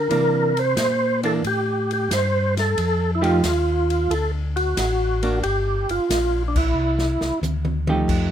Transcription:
Already playing: A#4
0.10 C3 E3 A#3 D4, ride
0.57 C5, ride
0.77 A#2, snare, hi-hat pedal, ride
1.23 E3 A#3 D4 A4, ride
1.44 A2 G4, ride
1.91 G4, ride
2.11 G2 C5, snare, hi-hat pedal, ride
2.57 A4, snare, ride
2.78 F2, ride
3.15 E4
3.21 F3 A3 D#4 F4 G4, ride
3.43 D#2, snare, hi-hat pedal, ride
3.90 ride
4.10 D2 A4, ride
4.56 F#4, ride
4.77 A1, snare, hi-hat pedal, ride
5.23 A#3 D4, ride
5.43 G1 G4, ride
5.89 G1 F4, ride
6.09 A#1, snare, hi-hat pedal, ride
6.48 D4
6.56 E4, kick, crash
6.75 C2
6.98 snare
7.21 C2, snare
7.42 D2, hi-hat pedal, high tom
7.65 high tom
7.87 F3 A3 D#4 G4, high tom
8.08 F2, kick, crash

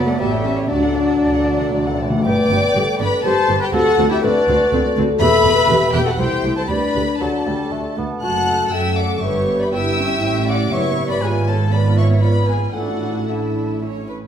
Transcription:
Already playing: F#1 F#3 D5
0.07 A3 A4 F#5
0.19 A1 G3 B3 G4 E5 A5
0.32 A4 C#5 G5
0.44 C#4 G4 E5 A5
0.57 A4 C#5 G5
0.68 D2 D3 F#3 D4 F#4 D5 A5
0.82 A4 F#5
0.86 D3
0.94 D3 F#4 D5 A5
1.00 D3
1.07 D3 A4 F#5
1.16 D3 D5
1.21 D2 D3 F#4 A5
1.31 D3 F#5
1.36 D3 A4
1.46 D3 F#4 D5 A5
1.54 D3 F#5
1.59 D3 A4 F#5
1.70 D3 D5 A5
1.74 D2 D3 F#4
1.85 D3 A4 F#5
1.94 D3 A5
1.99 D3 F#4 D5
2.10 D3 A4 F#5
2.18 D3
2.24 G1 G2 B3 G4 B4 D5 G5 D6
2.51 G1 G2 B3 G4
2.76 G1 G2 B3 G4 A4
2.99 G1 G2 B3 G4 B4 D5 B5
3.23 G1 G2 B3 G4 A4 C5 A5
3.48 G1 G2 B3 G4
3.59 G4 B4 G5
3.72 D2 C4 F#4 A4 F#5
3.98 D2 C4 F#4
4.10 E4 G4 E5
4.22 D2 C4 D4 F#4 B4 D5
4.47 D2 C4 F#4
4.72 D2 C4 F#4 A4
4.96 D2 C4 F#4
5.19 E1 E2 B3 G4 B4 E5 B5
5.44 E1 E2 B3 G4
5.68 E1 E2 B3 G4
5.92 E1 E2 B3 G4 B4 G5
6.04 F#4 A4 F#5
6.17 C2 A3 E4 G4 C5 G5
6.43 C2 A3 E4
6.57 A4 C5 A5
6.68 D2 A3 D4 G4 B4 D5 B5
6.95 D2 A3 G4
7.20 D2 F#3 A3 G4 A4 D5 A5
7.46 D2 G3 A3 G4
7.71 D2 A3 F#4
7.96 D2 A3 B3 F#4
8.20 F#1 F#2 A3 F#4 F#5 A5 F#6
8.48 A4
8.72 F#2 F#3 A3 A4 E5 G5 E6
8.94 D5 F#5 D6
9.20 G1 G2 B3 G4 B4 C#5 E5 C#6
9.58 B4 D5 B5
9.72 G1 G2 B3 E4 G4 E5 G5 E6
10.00 C#4
10.23 A1 A2 C#4
10.48 D5 F#5 D6
10.71 F#1 F#2 B3 E4 C#5 E5 C#6
11.07 B4 D5 B5
11.21 G#1 G#2 B3 F4 G#4 B4 G#5
11.47 A4 C#5 A5
11.71 B3 F4 B4 D5 B5
11.98 C#5 E5 C#6
12.22 B3 F4 B4 D5 B5
12.46 B4 G#5
12.50 G#4
12.72 A1 A2 D4 E4 F#4 A4 F#5
13.26 D4 E4 A4 E5
13.30 E4
13.81 C#4 E4 C#5
14.08 B4

